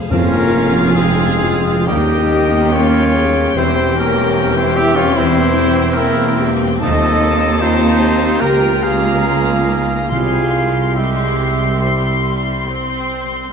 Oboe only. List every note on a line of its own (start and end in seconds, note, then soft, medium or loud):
0.11 0.98 A#4 loud
0.96 1.87 G#4 loud
1.87 2.75 D#5 loud
2.73 3.55 C#5 loud
3.58 3.96 C5 loud
3.99 4.58 A#4 loud
4.57 4.78 C5 loud
4.76 4.98 E5 loud
4.96 5.17 C#5 loud
5.16 5.95 C5 loud
5.94 6.51 A#4 loud
6.82 7.63 D#5 loud
7.61 8.43 C5 loud
8.41 8.86 G5 loud
8.84 10.10 F5 loud
10.11 10.99 F5 loud
10.97 12.66 E5 medium